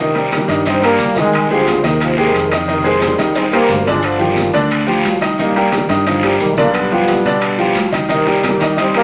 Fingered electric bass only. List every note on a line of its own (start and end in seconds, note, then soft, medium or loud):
0.49 0.96 G2 medium
0.99 1.78 C2 medium
1.84 2.31 D#2 medium
2.35 3.14 F2 medium
3.19 3.66 C2 loud
3.70 4.49 G1 medium
4.54 5.02 D2 medium
5.05 5.84 C2 medium
5.89 6.37 G2 medium
6.40 7.19 B1 medium
7.25 7.72 B2 medium
7.75 8.54 C2 medium
8.61 9.03 C2 medium